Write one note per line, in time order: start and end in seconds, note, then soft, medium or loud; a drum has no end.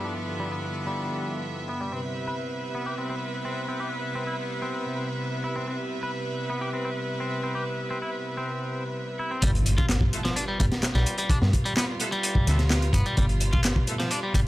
0.00 1.89 G2 medium
0.00 1.89 D3 medium
0.00 1.89 F3 medium
0.00 1.76 B3 medium
0.00 1.89 B3 medium
0.00 1.76 E4 medium
0.00 1.76 F4 medium
0.00 1.76 G4 medium
0.00 1.89 G4 medium
0.00 1.76 A4 medium
0.00 1.76 B4 medium
0.00 9.39 E5 medium
0.05 0.12 D4 medium
0.40 0.47 G3 medium
0.52 0.59 B3 medium
0.87 1.33 G3 medium
1.69 1.80 B3 medium
1.81 1.91 G3 medium
1.92 9.39 C3 medium
1.92 9.39 G3 medium
1.92 5.65 B3 medium
1.92 2.00 C4 medium
1.92 5.65 C4 medium
1.92 5.65 E4 medium
1.92 9.39 B4 medium
1.92 5.65 B4 medium
2.28 2.35 B4 medium
2.75 2.85 B3 medium
2.86 2.94 G4 medium
2.98 3.08 C4 medium
3.10 3.14 C4 medium
3.45 3.67 C4 medium
3.68 3.79 C4 medium
3.80 3.88 G4 medium
4.15 4.23 C4 medium
4.27 4.34 E4 medium
4.62 5.08 C4 medium
5.44 5.55 E4 medium
5.56 5.66 C4 medium
5.68 9.40 B3 medium
5.68 9.40 C4 medium
5.68 5.75 C4 medium
5.68 9.40 E4 medium
5.68 9.40 B4 medium
6.03 6.10 B4 medium
6.50 6.60 B3 medium
6.61 6.69 G4 medium
6.73 6.84 C4 medium
6.85 6.89 C4 medium
7.20 7.42 C4 medium
7.43 7.54 C4 medium
7.55 7.63 G4 medium
7.91 7.98 C4 medium
8.02 8.10 E4 medium
8.37 8.83 C4 loud
9.19 9.30 E4 medium
9.31 9.41 C4 medium
9.42 10.09 G1 loud
9.42 9.50 G3 medium
9.42 14.48 G3 medium
9.42 14.48 F4 medium
9.42 14.48 B4 medium
9.42 kick loud
9.42 closed hi-hat medium
9.42 closed hi-hat soft
9.42 impact medium
9.55 closed hi-hat soft
9.66 closed hi-hat medium
9.78 9.85 F4 medium
9.78 kick loud
9.78 closed hi-hat soft
9.89 snare loud
9.89 clap loud
9.89 closed hi-hat medium
9.89 closed hi-hat soft
10.01 kick loud
10.13 10.20 A3 medium
10.13 10.20 B3 medium
10.13 10.20 E4 medium
10.13 10.20 F4 medium
10.13 10.20 A4 medium
10.13 closed hi-hat medium
10.25 10.35 F3 medium
10.25 snare soft
10.25 closed hi-hat soft
10.36 10.44 D4 medium
10.36 closed hi-hat medium
10.36 closed hi-hat soft
10.48 10.58 G3 medium
10.60 10.69 G1 medium
10.60 10.64 G3 loud
10.60 kick loud
10.60 closed hi-hat medium
10.72 snare medium
10.72 closed hi-hat soft
10.83 snare loud
10.83 clap loud
10.83 closed hi-hat medium
10.83 closed hi-hat soft
10.95 11.04 B1 medium
10.95 11.17 G3 medium
10.95 snare soft
10.95 closed hi-hat soft
11.06 closed hi-hat medium
11.18 11.29 G3 medium
11.18 closed hi-hat soft
11.29 11.38 D4 medium
11.29 muted picked electric bass stroke soft
11.29 kick loud
11.29 closed hi-hat medium
11.29 closed hi-hat soft
11.42 11.51 G2 medium
11.42 snare medium
11.53 kick loud
11.53 closed hi-hat medium
11.65 11.73 G3 loud
11.65 closed hi-hat soft
11.77 11.85 B3 medium
11.77 snare loud
11.77 clap loud
11.77 closed hi-hat soft
11.77 closed hi-hat medium
12.00 12.08 A3 loud
12.00 12.08 B3 loud
12.00 12.08 E4 medium
12.00 12.08 F4 medium
12.00 12.08 A4 loud
12.00 closed hi-hat medium
12.12 12.58 G3 loud
12.12 closed hi-hat soft
12.23 closed hi-hat medium
12.23 closed hi-hat soft
12.35 kick loud
12.47 12.90 D2 medium
12.47 12.59 A3 medium
12.47 12.59 B3 medium
12.47 12.59 E4 medium
12.47 12.59 F4 medium
12.47 12.59 A4 loud
12.47 snare soft
12.47 closed hi-hat medium
12.59 snare soft
12.59 closed hi-hat soft
12.70 snare loud
12.70 clap loud
12.70 closed hi-hat medium
12.70 closed hi-hat soft
12.82 closed hi-hat soft
12.93 13.03 G1 medium
12.93 13.05 B3 medium
12.93 kick medium
12.93 closed hi-hat medium
13.06 13.16 G3 medium
13.06 closed hi-hat soft
13.17 13.84 G1 loud
13.17 13.25 G3 medium
13.17 kick loud
13.17 closed hi-hat medium
13.17 closed hi-hat soft
13.29 closed hi-hat soft
13.40 closed hi-hat medium
13.53 13.60 F4 medium
13.53 kick medium
13.53 closed hi-hat soft
13.63 snare loud
13.63 clap loud
13.63 closed hi-hat medium
13.63 closed hi-hat soft
13.76 kick loud
13.87 13.95 A3 medium
13.87 13.95 B3 medium
13.87 13.95 E4 medium
13.87 13.95 F4 medium
13.87 13.95 A4 medium
13.87 closed hi-hat medium
14.00 14.10 F3 medium
14.00 snare soft
14.00 closed hi-hat soft
14.11 14.19 D4 medium
14.11 closed hi-hat medium
14.11 closed hi-hat soft
14.23 14.34 G3 medium
14.34 14.44 G1 medium
14.34 14.39 G3 loud
14.34 kick medium
14.34 closed hi-hat medium